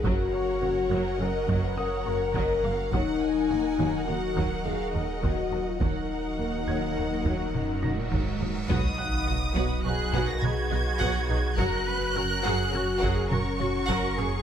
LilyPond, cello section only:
\new Staff \with { instrumentName = "Cello section" } { \clef bass \time 5/4 \key ees \minor \tempo 4 = 104 ges,8 r8 ges,8 ges,8 ges,8 ges,8 ges,8 ges,8 ges,8 ges,8 | ees,8 r8 ees,8 ees,8 ees,8 ees,8 ees,8 ees,8 ees,8 ees,8 | ees,8 r8 ees,2 ges,8. bes,16 aes,4 | r2 aes'4 fis'2 |
bes'8 ces''8 bes'8 aes'8 ges'8 aes'8 bes'8 ges'8 bes'8 aes'8 | }